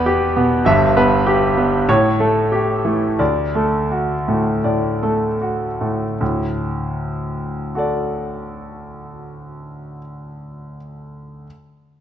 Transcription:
0.00 0.62 E2 medium
0.00 0.36 B3 medium
0.00 0.24 B4 medium
0.00 0.68 D5 medium
0.06 0.54 G4 medium
0.36 0.66 B2 medium
0.36 0.60 B3 medium
0.65 1.84 G1 medium
0.65 1.84 G2 medium
0.65 1.14 E5 medium
0.97 1.21 B3 medium
0.97 1.45 B4 medium
1.26 1.75 G4 medium
1.57 1.88 G3 medium
1.57 1.81 B3 medium
1.89 3.16 A2 medium
1.89 2.39 C#5 medium
2.20 2.46 A3 medium
2.20 2.72 A4 medium
2.52 3.06 G4 medium
2.85 3.19 E3 soft
2.85 3.12 A3 soft
3.19 4.60 D2 medium
3.19 3.77 D5 medium
3.55 3.84 A3 soft
3.55 4.13 A4 medium
3.91 4.50 F#4 soft
4.28 4.63 A2 soft
4.28 4.57 A3 soft
4.64 4.95 A2 soft
4.64 5.25 D5 soft
5.03 5.33 A3 soft
5.03 5.65 A4 soft
5.41 6.04 F#4 soft
5.81 6.19 A2 soft
5.81 6.12 A3 soft
6.21 9.98 D2 soft
6.21 9.99 A2 soft
7.75 10.75 F#4 soft
7.75 10.76 A4 soft
7.75 10.77 D5 soft

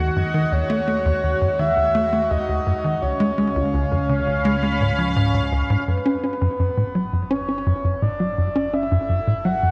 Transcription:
0.00 2.98 D#2 medium
0.00 5.89 G#3 medium
0.00 3.02 F#4 medium
0.00 3.02 F#5 medium
0.00 5.89 G#6 medium
0.16 0.23 F#2 medium
0.16 0.54 D#5 loud
0.34 0.45 D#3 medium
0.52 0.63 D#2 medium
0.52 1.61 C#5 loud
0.70 0.81 A3 loud
0.88 0.99 A3 medium
1.05 1.12 D#2 loud
1.23 1.35 D#2 medium
1.41 1.48 F#2 medium
1.59 1.70 D#3 medium
1.59 2.32 E5 loud
1.77 1.88 D#2 medium
1.95 2.06 A3 medium
2.13 2.24 A3 medium
2.31 2.37 D#2 medium
2.31 3.03 D#5 loud
2.48 2.60 D#2 medium
2.66 2.73 F#2 medium
2.84 2.96 D#3 medium
3.02 5.84 C#2 medium
3.02 3.13 C#2 medium
3.02 8.69 C#4 medium
3.02 5.16 C#5 medium
3.20 3.31 G#3 loud
3.38 3.49 G#3 medium
3.44 5.88 F5 medium
3.56 3.62 C#2 loud
3.73 3.85 C#2 medium
3.91 3.98 F2 medium
4.09 4.20 C#3 medium
4.27 4.38 C#2 medium
4.27 5.88 B5 medium
4.45 4.56 G#3 loud
4.63 4.74 G#3 medium
4.81 4.92 G#2 medium
4.98 5.15 F3 medium
5.16 5.33 G#2 loud
5.34 5.41 G#2 medium
5.52 5.63 C#2 medium
5.70 5.77 G#2 loud
5.88 9.71 F#1 medium
5.88 5.99 F#2 medium
5.88 9.71 F#4 medium
5.88 7.32 B4 medium
6.06 6.17 C#4 loud
6.24 6.35 C#4 medium
6.41 6.48 F#2 loud
6.51 9.71 E5 medium
6.59 6.70 F#2 medium
6.77 6.84 A2 medium
6.95 7.06 F#3 medium
7.13 7.24 F#2 medium
7.31 7.42 C#4 loud
7.31 8.02 C#5 loud
7.49 7.60 C#4 medium
7.66 7.73 F#2 loud
7.84 7.95 F#2 medium
8.02 8.09 A2 medium
8.02 8.75 D5 medium
8.20 8.31 F#3 medium
8.38 8.49 F#2 medium
8.44 9.71 A4 medium
8.55 8.67 C#4 loud
8.73 8.85 C#4 medium
8.73 9.46 E5 loud
8.91 8.98 F#2 loud
9.09 9.20 F#2 medium
9.27 9.34 A2 medium
9.45 9.56 F#3 medium
9.45 9.71 F#5 loud
9.63 9.71 F#2 medium

